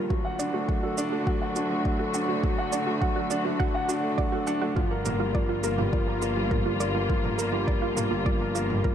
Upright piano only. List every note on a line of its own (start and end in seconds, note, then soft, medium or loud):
0.00 0.12 F3 medium
0.00 0.12 G3 medium
0.00 0.12 A#3 medium
0.00 0.12 F4 medium
0.00 0.12 A#4 medium
0.10 0.24 F#3 medium
0.24 0.39 F#5 medium
0.39 0.53 D4 medium
0.54 0.68 A3 medium
0.68 0.77 F#3 medium
0.83 0.91 A4 medium
0.98 1.11 D4 loud
1.12 1.26 A3 medium
1.27 1.41 F#3 loud
1.42 1.55 F#5 medium
1.56 1.70 D4 medium
1.71 1.84 A3 medium
1.86 1.94 F#3 medium
2.00 2.08 A4 medium
2.14 2.28 D4 medium
2.29 2.43 A3 medium
2.43 2.57 F#3 loud
2.58 2.72 F#5 medium
2.73 2.87 D4 medium
2.87 3.01 A3 medium
3.02 3.10 F#3 medium
3.16 3.25 A4 medium
3.31 3.45 D4 loud
3.45 3.59 A3 medium
3.60 3.74 F#3 medium
3.74 3.88 F#5 medium
3.89 4.03 D4 loud
4.04 4.17 A3 medium
4.18 4.27 F#3 medium
4.33 4.41 A4 medium
4.47 4.61 D4 loud
4.62 4.76 A3 medium
4.76 4.90 F3 medium
4.91 5.05 A#4 medium
5.05 5.19 A#3 medium
5.20 5.34 G3 medium
5.35 5.43 F3 medium
5.49 5.57 F4 medium
5.64 5.78 A#3 loud
5.78 5.92 G3 medium
5.93 6.07 F3 medium
6.07 6.21 A#4 medium
6.22 6.36 A#3 loud
6.36 6.50 G3 medium
6.51 6.60 F3 medium
6.66 6.74 F4 medium
6.80 6.94 A#3 medium
6.95 7.09 G3 medium
7.09 7.23 F3 loud
7.24 7.38 A#4 medium
7.38 7.52 A#3 loud
7.53 7.67 G3 medium
7.68 7.76 F3 medium
7.82 7.91 F4 medium
7.97 8.11 A#3 loud
8.11 8.25 G3 medium
8.26 8.40 F3 medium
8.41 8.54 A#4 medium
8.55 8.69 A#3 loud
8.70 8.84 G3 medium
8.84 8.92 F3 medium